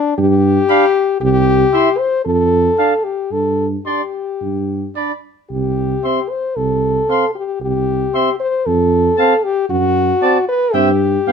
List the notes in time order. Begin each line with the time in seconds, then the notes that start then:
Already playing: D4
0.18 G2 G4
0.69 D4 F5 B5
1.21 C2 G4
1.73 E4 E5 C6
1.98 C5
2.25 F2 A4
2.78 D4 F5 A5
3.04 G4
3.32 G2 A4
3.86 D4 G4 D5 C6
4.41 G2
4.95 D4 D5 B5
5.50 C2 G4
6.04 C4 E5 C6
6.30 C5
6.56 C2 A4
7.09 C4 F5 C6
7.35 G4
7.61 C2 G4
8.14 C4 E5 C6
8.40 C5
8.66 F2 A4
9.17 C4 F5 A5
9.44 G4
9.70 F#2 F#4
10.22 C4 D5 A5
10.48 B4
10.73 G2 C4 G4 E5 G5
11.27 G2 B3 F5 G5